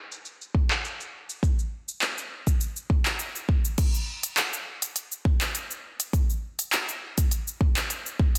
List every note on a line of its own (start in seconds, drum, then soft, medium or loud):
0.12 cabasa medium
0.25 cabasa medium
0.42 cabasa soft
0.55 kick loud
0.71 clap medium
0.71 cabasa medium
0.85 cabasa medium
1.00 cabasa soft
1.30 cabasa medium
1.43 kick medium
1.43 cabasa medium
1.59 cabasa soft
1.88 cabasa medium
2.02 clap medium
2.02 cabasa soft
2.18 cabasa soft
2.47 kick medium
2.47 cabasa medium
2.61 cabasa medium
2.76 cabasa soft
2.90 kick medium
3.06 clap medium
3.06 cabasa medium
3.19 cabasa medium
3.36 cabasa soft
3.49 kick medium
3.65 cabasa medium
3.78 kick loud
3.78 closed hi-hat soft
3.78 crash loud
3.78 cabasa medium
3.94 cabasa soft
4.23 closed hi-hat medium
4.23 cabasa medium
4.37 clap medium
4.37 closed hi-hat soft
4.37 cabasa medium
4.53 cabasa soft
4.82 closed hi-hat medium
4.82 cabasa medium
4.96 closed hi-hat medium
4.96 cabasa medium
5.12 cabasa soft
5.25 kick loud
5.41 clap medium
5.41 closed hi-hat medium
5.41 cabasa medium
5.55 closed hi-hat soft
5.55 cabasa medium
5.71 cabasa soft
6.00 closed hi-hat medium
6.00 cabasa medium
6.13 kick loud
6.13 closed hi-hat soft
6.13 cabasa medium
6.30 cabasa soft
6.59 closed hi-hat medium
6.59 cabasa medium
6.72 clap medium
6.72 closed hi-hat soft
6.72 cabasa medium
6.89 cabasa soft
7.18 kick medium
7.18 closed hi-hat medium
7.18 cabasa medium
7.31 closed hi-hat soft
7.31 cabasa medium
7.48 cabasa soft
7.61 kick loud
7.77 clap medium
7.77 closed hi-hat medium
7.77 cabasa medium
7.90 closed hi-hat soft
7.90 cabasa medium
8.06 cabasa soft
8.20 kick loud
8.35 closed hi-hat medium